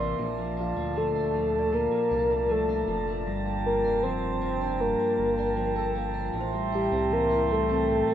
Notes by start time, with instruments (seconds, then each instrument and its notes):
Already playing: analog synth bass A1, clean electric guitar C3 E3 D4, glass harmonica A#4 D5 E5 C6, celesta E5 G5
0.00 clean electric guitar A#3
0.19 analog synth bass A#1, clean electric guitar A#2, glass harmonica F4 A5
0.38 clean electric guitar F3
0.57 clean electric guitar D4, soft synth lead F4
0.76 analog synth bass D2, clean electric guitar A3
0.96 clean electric guitar F3, soft synth lead A4
1.15 clean electric guitar D4
1.35 clean electric guitar F3
1.59 celesta D5
1.73 clean electric guitar A#2, soft synth lead A#4
1.92 clean electric guitar F3
2.11 analog synth bass C2, clean electric guitar D4
2.30 clean electric guitar A3
2.49 clean electric guitar F3, soft synth lead A4
2.69 clean electric guitar D4
2.88 analog synth bass F1, clean electric guitar F3
3.07 clean electric guitar A3
3.26 analog synth bass G1, clean electric guitar G2, glass harmonica G5
3.46 clean electric guitar A#3
3.66 soft synth lead A#4
3.84 analog synth bass F1, clean electric guitar D4
4.03 clean electric guitar F3, soft synth lead C5
4.41 clean electric guitar A#3
4.61 clean electric guitar D4
4.80 clean electric guitar G2, soft synth lead A#4
5.00 clean electric guitar A#3
5.19 analog synth bass G1
5.38 clean electric guitar D4, celesta D5
5.57 clean electric guitar F3
5.76 clean electric guitar A4
5.95 clean electric guitar A#3
6.14 clean electric guitar D4
6.33 analog synth bass A1, clean electric guitar A2, glass harmonica E5 G5 A5 C6
6.41 celesta C5
6.53 clean electric guitar G3
6.72 clean electric guitar E4, soft synth lead G4
6.92 analog synth bass C2, clean electric guitar C4
7.11 clean electric guitar E3, soft synth lead A#4
7.30 clean electric guitar E4
7.50 clean electric guitar G3, soft synth lead A4
7.69 clean electric guitar C4
7.88 clean electric guitar A2
8.08 clean electric guitar G3